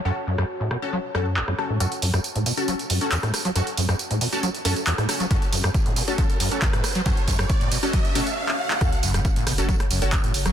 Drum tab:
HH |----------------|xxoxxxoxxxoxxxox|xxoxxxoxxxoxxxox|xxoxxxoxxxoxxxox|
TB |----------------|xxxxxxxxxxxxxxxx|xxxxxxxxxxxxxxxx|xxxxxxxxxxxxxxxx|
CP |------------x---|------------x---|------------x---|------------x---|
SD |---r--r---r--rr-|---r---------rr-|---r---------rr-|---r---------rr-|
BD |----------------|----------------|----------------|o---o---o---o---|

HH |xxoxxxoxxxox----|xxoxxxoxxxoxxxox|
TB |xxxxxxxxxxxx----|xxxxxxxxxxxxxxxx|
CP |-------------x-x|------------x---|
SD |---r------------|r--r--r--r--r--r|
BD |o-o-o---o-------|o---o---o---o---|